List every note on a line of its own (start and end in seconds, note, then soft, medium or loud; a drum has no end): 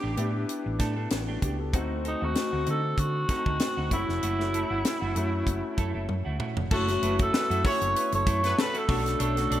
0.00 0.15 A1 medium
0.00 0.16 A3 medium
0.00 0.17 B3 medium
0.00 0.17 D4 medium
0.00 0.16 D4 medium
0.00 0.18 E4 medium
0.00 0.18 G4 medium
0.00 0.46 G4 medium
0.00 0.17 G4 medium
0.17 0.44 A2 medium
0.17 0.32 A3 medium
0.17 0.94 B3 medium
0.17 0.94 D4 medium
0.17 0.33 D4 medium
0.17 0.95 E4 medium
0.17 0.95 G4 medium
0.17 0.33 G4 medium
0.17 closed hi-hat medium
0.34 muted clean electric guitar stroke soft
0.48 muted clean electric guitar stroke soft
0.48 closed hi-hat medium
0.65 0.78 A1 medium
0.65 muted clean electric guitar stroke soft
0.79 1.06 A2 medium
0.79 0.96 A3 medium
0.79 0.96 D4 medium
0.79 0.95 A4 medium
0.79 kick medium
0.79 snare soft
0.79 closed hi-hat medium
0.96 1.10 A3 medium
0.96 1.10 D4 medium
0.96 1.09 A4 medium
1.10 1.37 A1 medium
1.10 1.40 F#4 medium
1.10 snare loud
1.10 closed hi-hat medium
1.28 1.41 A3 medium
1.28 1.41 D4 medium
1.28 1.42 G4 medium
1.42 1.74 C#2 medium
1.42 1.57 A3 medium
1.42 1.58 D4 medium
1.42 1.58 G4 medium
1.42 1.57 G4 medium
1.42 kick medium
1.42 closed hi-hat medium
1.59 1.89 A4 medium
1.59 muted clean electric guitar stroke soft
1.73 2.14 D2 medium
1.73 2.02 A3 medium
1.73 1.92 C4 medium
1.73 2.02 C4 medium
1.73 1.93 D#4 medium
1.73 2.03 D#4 medium
1.73 1.93 F#4 medium
1.73 2.03 F#4 medium
1.73 kick loud
1.73 closed hi-hat medium
2.04 2.20 C4 medium
2.04 2.20 D#4 medium
2.04 2.26 D#4 medium
2.04 2.20 A4 medium
2.04 closed hi-hat medium
2.21 2.34 D#2 medium
2.21 2.88 A3 medium
2.21 2.34 C4 soft
2.21 2.88 C4 medium
2.21 2.34 D#4 medium
2.21 2.88 D#4 medium
2.21 2.34 F#4 medium
2.21 2.88 F#4 medium
2.21 2.68 F#4 medium
2.35 snare loud
2.35 closed hi-hat medium
2.52 2.65 D2 medium
2.52 2.65 C4 medium
2.52 2.65 D#4 medium
2.52 2.66 F#4 medium
2.66 2.93 D3 medium
2.66 2.82 C4 medium
2.66 2.82 D#4 medium
2.66 2.82 F#4 medium
2.66 closed hi-hat medium
2.70 3.01 A4 medium
2.98 3.24 D3 loud
2.98 3.92 F#4 loud
2.98 muted clean electric guitar stroke soft
2.98 kick medium
2.98 closed hi-hat medium
3.15 muted clean electric guitar stroke soft
3.29 3.86 A3 medium
3.29 3.46 C4 medium
3.29 3.87 C4 medium
3.29 3.45 D#4 medium
3.29 3.87 D#4 medium
3.29 3.87 F#4 medium
3.29 3.45 A4 medium
3.29 kick medium
3.29 snare soft
3.29 closed hi-hat medium
3.46 3.58 D2 medium
3.46 3.59 C4 soft
3.46 3.59 D#4 medium
3.46 3.59 A4 medium
3.46 kick medium
3.59 muted clean electric guitar stroke soft
3.59 snare loud
3.59 closed hi-hat medium
3.77 3.89 D2 medium
3.77 3.91 C4 medium
3.77 3.92 D#4 medium
3.77 3.91 F#4 medium
3.91 4.06 F#1 medium
3.91 4.29 A3 medium
3.91 4.06 A3 medium
3.91 4.29 C#4 medium
3.91 4.29 E4 medium
3.91 4.07 E4 medium
3.91 6.06 E4 medium
3.91 4.30 F#4 medium
3.91 4.07 F#4 medium
3.91 kick medium
3.91 closed hi-hat medium
4.08 4.20 F1 medium
4.08 muted clean electric guitar stroke soft
4.08 snare soft
4.23 4.63 F#1 medium
4.23 4.41 A3 medium
4.23 4.42 E4 medium
4.23 4.42 F#4 medium
4.23 closed hi-hat medium
4.39 4.85 A3 medium
4.39 4.86 C#4 medium
4.39 4.86 E4 medium
4.39 4.86 F#4 medium
4.39 snare soft
4.53 4.69 A3 medium
4.53 4.69 E4 medium
4.53 4.69 A4 medium
4.53 closed hi-hat medium
4.70 4.82 G1 medium
4.70 4.83 A3 medium
4.70 4.84 E4 soft
4.70 4.83 F#4 medium
4.85 snare loud
4.85 closed hi-hat medium
5.01 5.14 F#1 medium
5.01 5.14 A3 medium
5.01 5.15 E4 medium
5.01 5.16 F#4 medium
5.15 5.42 F#2 medium
5.15 5.92 A3 medium
5.15 5.31 A3 medium
5.15 5.93 C#4 medium
5.15 5.93 E4 medium
5.15 5.31 E4 medium
5.15 5.93 F#4 medium
5.15 5.31 F#4 medium
5.15 closed hi-hat medium
5.46 5.61 F#1 medium
5.46 muted clean electric guitar stroke soft
5.46 kick medium
5.46 closed hi-hat medium
5.63 muted clean electric guitar stroke soft
5.77 5.92 F#2 medium
5.77 5.94 A3 medium
5.77 5.94 E4 medium
5.77 5.93 A4 medium
5.77 kick medium
5.77 closed hi-hat medium
5.94 6.07 F#1 medium
5.94 6.07 A3 soft
5.94 6.08 E4 medium
5.94 6.07 A4 medium
6.09 6.23 F#2 medium
6.09 muted clean electric guitar stroke soft
6.09 high tom medium
6.25 6.38 D2 medium
6.25 6.38 A3 medium
6.25 6.39 E4 medium
6.25 6.39 F#4 medium
6.39 6.55 A3 medium
6.39 6.55 E4 medium
6.39 6.56 F#4 medium
6.39 mid tom medium
6.57 6.69 F1 medium
6.57 muted clean electric guitar stroke soft
6.57 floor tom medium
6.71 6.97 F#1 medium
6.71 6.90 A3 medium
6.71 6.81 A3 medium
6.71 6.85 A3 loud
6.71 6.82 C#4 medium
6.71 6.90 E4 medium
6.71 6.82 E4 medium
6.71 6.91 F#4 medium
6.71 6.82 F#4 medium
6.71 7.17 F#4 medium
6.71 6.85 A4 loud
6.71 kick loud
6.71 crash loud
6.88 7.34 A3 medium
6.88 7.34 C#4 medium
6.88 7.34 E4 medium
6.88 7.35 F#4 medium
6.88 snare soft
6.88 closed hi-hat soft
7.02 7.28 F#1 medium
7.02 7.17 A3 medium
7.02 7.16 B3 medium
7.02 7.18 E4 medium
7.02 7.18 A4 medium
7.02 7.16 B4 medium
7.02 closed hi-hat medium
7.19 7.32 A3 soft
7.19 7.33 E4 medium
7.19 7.32 F#4 medium
7.19 7.68 A4 loud
7.19 kick loud
7.19 closed hi-hat medium
7.33 7.47 B3 medium
7.33 7.47 B4 medium
7.33 muted clean electric guitar stroke soft
7.33 muted fingered electric bass stroke soft
7.33 snare loud
7.50 7.62 F#2 medium
7.50 7.63 A3 medium
7.50 7.64 E4 medium
7.50 7.64 F#4 medium
7.50 closed hi-hat soft
7.64 8.41 A3 medium
7.64 7.89 C#4 loud
7.64 8.41 C#4 medium
7.64 8.42 E4 medium
7.64 7.80 E4 medium
7.64 8.42 F#4 medium
7.64 7.80 F#4 medium
7.64 7.89 C#5 loud
7.64 8.13 C#5 loud
7.64 kick loud
7.64 open hi-hat medium
7.81 7.93 F#1 medium
7.81 muted clean electric guitar stroke soft
7.81 closed hi-hat medium
7.95 8.10 B3 medium
7.95 8.09 B4 medium
7.95 muted clean electric guitar stroke soft
7.95 closed hi-hat medium
8.12 8.24 F#1 loud
8.12 8.24 A3 medium
8.12 8.25 A4 medium
8.12 8.62 C#5 loud
8.12 muted clean electric guitar stroke medium
8.12 closed hi-hat medium
8.26 8.53 F#2 medium
8.26 8.43 A3 medium
8.26 8.42 E4 loud
8.26 8.42 A4 loud
8.26 kick loud
8.26 closed hi-hat medium
8.43 8.56 A3 medium
8.43 8.55 B3 loud
8.43 8.56 E4 medium
8.43 8.56 A4 medium
8.43 8.56 B4 loud
8.43 snare soft
8.43 closed hi-hat medium
8.58 8.83 A3 medium
8.58 8.83 A4 loud
8.58 8.79 B4 medium
8.58 snare loud
8.74 8.92 A3 medium
8.74 8.88 E4 medium
8.74 8.88 F#4 medium
8.74 closed hi-hat medium
8.78 9.22 A4 medium
8.88 9.15 B1 loud
8.88 9.26 A3 medium
8.88 9.26 C#4 medium
8.88 9.04 D4 medium
8.88 9.27 D4 medium
8.88 9.27 F#4 medium
8.88 9.04 A4 medium
8.88 9.04 C#5 medium
8.88 kick loud
8.88 open hi-hat medium
9.05 muted clean electric guitar stroke soft
9.05 snare soft
9.05 closed hi-hat medium
9.19 9.46 B1 loud
9.19 9.38 D4 medium
9.19 9.39 A4 medium
9.19 9.60 A4 medium
9.19 9.39 C#5 medium
9.19 closed hi-hat medium
9.36 9.60 A3 medium
9.36 9.60 C#4 medium
9.36 9.60 D4 medium
9.36 9.60 F#4 medium
9.36 snare soft
9.36 closed hi-hat soft
9.50 9.60 B1 loud
9.50 9.60 D4 medium
9.50 9.60 A4 medium
9.50 9.60 D5 medium
9.50 closed hi-hat medium